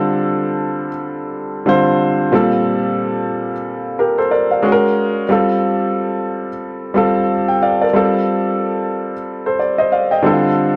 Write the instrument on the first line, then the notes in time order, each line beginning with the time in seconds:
grand piano
Already playing: D3 G3 C4 F4 A4
1.66 D3 G3 C4 F4 C5
2.32 A#2 G3 C4 F4 A4
3.99 G4 A#4
4.18 A4 C5
4.31 A#4 D5
4.51 D5 F5
4.63 G#3 C#4 F#4 G#4
4.72 A#4
5.29 G3 C4 F4 A4
6.94 G3 C4 F4 A4
7.48 G5
7.62 D5 F5
7.82 A#4 D5
7.93 G3 C4 F4 A4
9.46 A4 C5
9.59 D5
9.78 C5 D#5
9.92 D5 F5
10.11 D#5 G5
10.23 D3 G3 C4 E4 A4
10.32 F4